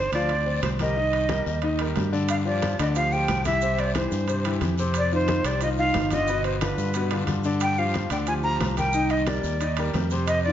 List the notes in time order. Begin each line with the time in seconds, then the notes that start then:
Already playing: C5
0.12 D2 F3 F4 D5 F5, high conga, high timbale, short guiro
0.29 C4 C5 D5, high conga, high timbale, long guiro
0.46 C4 C5 D5, high conga
0.62 C2 C5, high conga, high timbale, low timbale, short guiro
0.79 G3 G4 A#4 D#5, high conga, high timbale, short guiro
0.96 D#3 D#4 D#5, high conga, long guiro
1.13 high conga, high timbale
1.29 G3 G4 A#4, high conga, high timbale, short guiro
1.46 D#2, high conga, short guiro
1.62 D#3 D#4 D#5, high conga, high timbale, long guiro
1.79 G3 G4 A#4, high conga, high timbale
1.96 G2, high conga, high timbale, low timbale, short guiro
2.12 D3 D4 D5, high conga, short guiro
2.29 F5, high conga, high timbale, long guiro, maracas
2.45 F3 F4 G4 D5, high conga, maracas
2.62 high conga, high timbale, short guiro, maracas
2.79 D2 D3 D4 D5 D#5, high conga, high timbale, short guiro, maracas
2.95 F3 F4 G4 F5, high timbale, long guiro, maracas
3.12 F3 F4 G4 G5, high conga, maracas
3.28 C2, high conga, high timbale, low timbale, short guiro, maracas
3.45 E3 E4 G4 E5, high conga, high timbale, short guiro, maracas
3.62 C3 C4 C5, high conga, long guiro, maracas
3.79 D5, high conga, high timbale, maracas
3.95 E3 E4 G4 C5, high conga, high timbale, short guiro, maracas
4.12 G2, high conga, short guiro, maracas
4.28 C3 C4 C5, high conga, high timbale, long guiro, maracas
4.45 E3 E4 G4, high conga, high timbale, maracas
4.61 F2, high conga, high timbale, short guiro, maracas
4.78 C3 C4 C5, high conga, short guiro, maracas
4.94 D5, high conga, high timbale, long guiro, maracas
5.12 D#3 D#4 F4 C5, high conga, maracas
5.28 high conga, high timbale, short guiro, maracas
5.44 C2 C3 C4 C5 D5, high conga, high timbale, short guiro, maracas
5.61 D#3 D#4 F4 D#5, high conga, high timbale, long guiro, maracas
5.77 D#3 D#4 F4 F5, high conga, maracas
5.94 G1, high conga, high timbale, low timbale, short guiro, maracas
6.10 D3 D4 F4 D#5, high conga, high timbale, short guiro, maracas
6.28 B2 B3 B4, high conga, long guiro, maracas
6.44 C5, high conga, high timbale, maracas
6.61 D3 D4 F4 B4, high conga, high timbale, short guiro, maracas
6.77 G2, high conga, short guiro, maracas
6.94 B2 B3 B4, high conga, high timbale, long guiro, maracas
7.11 D3 D4 F4, high conga, high timbale, maracas
7.27 G2, high conga, high timbale, short guiro, maracas
7.44 D3 D4 D5, high conga, short guiro, maracas
7.60 G5, high conga, high timbale, long guiro, maracas
7.77 F3 F4 G4 F5, high conga, maracas
7.94 high conga, high timbale, short guiro, maracas
8.10 D2 D3 D4 D5 G5, high conga, high timbale, short guiro, maracas
8.27 F3 F4 G4 G#5, high conga, high timbale, long guiro, maracas
8.43 F3 F4 G4 A#5, high conga, maracas
8.60 C2, high conga, high timbale, low timbale, short guiro, maracas
8.77 G3 G4 A#4 G5, high conga, high timbale, short guiro, maracas
8.93 D#3 D#4 D#5, high conga, long guiro, maracas
9.09 D#5, high conga, high timbale, maracas
9.27 G3 G4 A#4 D5, high conga, high timbale, short guiro, maracas
9.44 D#2, high conga, short guiro, maracas
9.61 D#3 D#4 D#5, high conga, high timbale, long guiro, maracas
9.77 G3 G4 A#4, high conga, high timbale, maracas
9.94 F2, high conga, high timbale, low timbale, short guiro, maracas
10.10 C3 C4 C5, high conga, short guiro, maracas
10.27 D#5, high conga, high timbale, long guiro, maracas
10.44 D#3 D#4 F4 D5, high conga, maracas